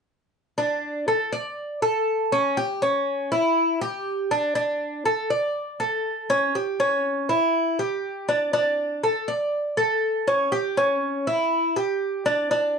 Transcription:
0.58 1.06 D4 medium
1.08 1.32 A4 medium
1.33 1.81 D5 medium
1.82 2.30 A4 medium
2.32 2.56 C#4 medium
2.57 2.81 G4 medium
2.82 3.30 C#4 medium
3.32 3.80 E4 medium
3.81 4.29 G4 medium
4.31 4.54 D4 medium
4.55 5.04 D4 medium
5.05 5.29 A4 medium
5.30 5.78 D5 medium
5.80 6.28 A4 medium
6.30 6.54 C#4 medium
6.55 6.79 G4 medium
6.80 7.28 C#4 medium
7.29 7.77 E4 medium
7.79 8.27 G4 medium
8.29 8.52 D4 medium
8.53 9.01 D4 medium
9.03 9.27 A4 medium
9.28 9.76 D5 medium
9.77 10.26 A4 medium
10.28 10.51 C#4 medium
10.52 10.76 G4 medium
10.77 11.25 C#4 medium
11.27 11.75 E4 medium
11.76 12.25 G4 medium
12.26 12.50 D4 medium
12.51 12.79 D4 medium

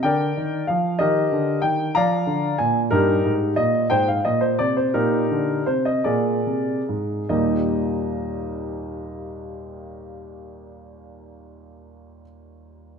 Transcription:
0.03 0.29 D3 soft
0.03 0.64 A#4 medium
0.03 0.64 D5 medium
0.03 0.63 G5 medium
0.37 0.62 D#3 soft
0.67 0.94 F3 soft
0.67 0.99 F5 medium
0.99 1.25 D#3 medium
0.99 1.60 G4 medium
0.99 1.60 A#4 medium
0.99 1.59 D#5 medium
1.32 1.57 D3 soft
1.62 1.89 D#3 soft
1.62 1.95 G5 medium
1.95 2.21 F3 soft
1.95 2.56 D5 medium
1.95 2.56 F5 medium
1.95 2.55 A#5 medium
2.27 2.53 D3 soft
2.58 2.86 A#2 soft
2.58 2.78 G#5 medium
2.91 3.18 G2 medium
2.91 3.54 D#4 medium
2.91 3.54 G4 medium
2.91 3.30 A#4 medium
3.25 3.52 G#2 soft
3.56 3.84 A#2 soft
3.56 3.87 D#5 medium
3.90 4.18 G#2 soft
3.90 4.06 C5 medium
3.90 4.07 G5 medium
4.08 4.25 F5 medium
4.25 4.52 A#2 soft
4.25 4.42 D#5 medium
4.41 4.59 C5 medium
4.59 4.88 C3 soft
4.59 4.76 D5 medium
4.77 4.94 C5 medium
4.94 5.23 A#2 soft
4.94 5.63 D#4 soft
4.94 5.63 G4 medium
4.94 5.67 A#4 medium
5.31 5.60 D3 soft
5.66 5.98 C3 soft
5.66 5.86 C5 medium
5.85 6.05 D#5 medium
6.04 6.38 A#2 soft
6.04 7.27 G#4 soft
6.04 7.27 A#4 soft
6.04 6.80 D5 medium
6.46 6.80 C3 soft
6.89 7.23 G#2 soft
7.29 12.22 D#2 soft
7.29 12.22 A#2 soft
7.29 12.22 G3 soft
7.29 12.22 A#3 soft
7.29 12.23 D#4 soft
7.29 12.23 G4 soft
7.29 12.22 D#5 soft

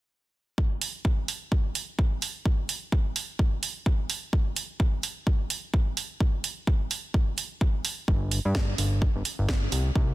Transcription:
0.58 kick loud
0.81 open hi-hat loud
1.05 kick loud
1.28 open hi-hat loud
1.52 kick loud
1.75 open hi-hat loud
1.99 kick loud
2.22 open hi-hat loud
2.45 kick loud
2.69 open hi-hat loud
2.92 kick loud
3.16 open hi-hat loud
3.39 kick loud
3.63 open hi-hat loud
3.86 kick loud
4.10 open hi-hat loud
4.33 kick loud
4.56 open hi-hat loud
4.80 kick loud
5.03 open hi-hat loud
5.27 kick loud
5.50 open hi-hat loud
5.74 kick loud
5.97 open hi-hat loud
6.20 kick loud
6.44 open hi-hat loud
6.67 kick loud
6.91 open hi-hat loud
7.14 kick loud
7.38 open hi-hat loud
7.61 kick loud
7.85 open hi-hat loud
8.08 8.40 G1 loud
8.08 kick loud
8.31 open hi-hat loud
8.45 8.75 G2 loud
8.55 kick loud
8.55 snare loud
8.78 9.10 G1 medium
8.78 open hi-hat loud
9.02 kick loud
9.16 9.23 G1 medium
9.25 open hi-hat loud
9.39 9.68 G1 medium
9.49 kick loud
9.49 snare loud
9.72 9.91 C2 medium
9.72 open hi-hat loud
9.96 10.14 C2 loud
9.96 kick loud

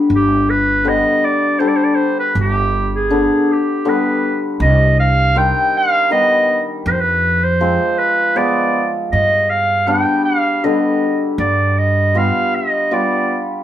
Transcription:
0.00 0.15 D3 medium
0.00 0.15 G3 medium
0.10 1.00 G1 loud
0.16 0.51 G4 loud
0.50 0.90 B4 loud
0.84 1.59 D3 medium
0.84 1.59 G3 medium
0.84 1.23 B3 medium
0.84 1.26 D#5 loud
1.24 1.61 D5 loud
1.59 3.09 D3 medium
1.59 3.15 G3 medium
1.59 1.98 D4 medium
1.59 1.70 C5 medium
1.68 1.78 D5 medium
1.76 1.86 C5 medium
1.84 1.97 D5 medium
1.95 2.18 C5 medium
2.20 2.36 B4 medium
2.35 3.25 G1 loud
2.41 2.91 G4 loud
2.95 3.54 G#4 medium
3.10 3.84 D3 medium
3.10 3.48 B3 medium
3.10 3.48 D4 medium
3.52 3.90 G4 medium
3.85 4.65 D3 medium
3.85 4.65 G3 medium
3.85 4.23 B3 medium
3.85 4.43 B4 medium
4.60 5.50 C2 loud
4.60 4.96 D#5 loud
5.00 5.39 F5 loud
5.35 6.10 D#3 medium
5.35 6.10 G3 medium
5.35 5.73 C4 medium
5.35 5.79 G5 loud
5.77 6.11 F5 loud
6.10 6.91 D#3 medium
6.10 6.91 G3 medium
6.10 6.49 B3 medium
6.10 6.64 D#5 loud
6.86 7.76 F2 loud
6.86 6.94 B4 medium
6.92 7.02 C5 medium
7.01 7.46 B4 loud
7.44 8.00 C5 loud
7.60 8.35 F3 medium
7.60 8.34 G#3 medium
7.60 7.99 C4 medium
7.99 8.38 B4 loud
8.35 9.18 F3 medium
8.35 9.18 G#3 medium
8.35 8.74 B3 medium
8.35 8.94 D5 medium
9.12 10.03 G2 loud
9.12 9.51 D#5 loud
9.50 9.89 F5 loud
9.87 10.63 G3 medium
9.87 10.26 B3 medium
9.87 10.26 D4 medium
9.87 10.24 G5 loud
10.25 10.66 F5 loud
10.64 13.63 D3 medium
10.64 12.13 G3 medium
10.64 11.02 B3 medium
10.64 11.21 D#5 medium
11.38 12.30 G2 loud
11.38 11.80 D5 loud
11.78 12.19 D#5 medium
12.15 12.90 G3 medium
12.15 12.53 B3 medium
12.15 12.53 F4 medium
12.15 12.57 F5 medium
12.55 12.95 D#5 loud
12.91 13.63 G3 medium
12.91 13.29 B3 medium
12.91 13.29 F4 medium
12.91 13.49 D5 medium

